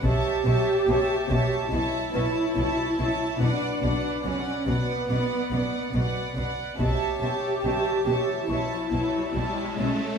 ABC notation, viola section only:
X:1
M:4/4
L:1/8
Q:1/4=71
K:Amix
V:1 name="Viola section"
G4 E4 | D2 C B,4 z | G4 E3 C |]